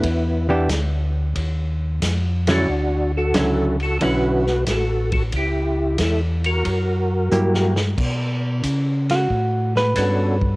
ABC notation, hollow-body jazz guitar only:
X:1
M:4/4
L:1/8
Q:"Swing" 1/4=91
K:Bm
V:1 name="Hollow-body jazz guitar"
z [E,B,DG] z4 z [D,F,CE] | z2 [D,F,CE] z [D,F,CE] z3 | z6 [F,^A,EG] z | z3 F2 B3 |]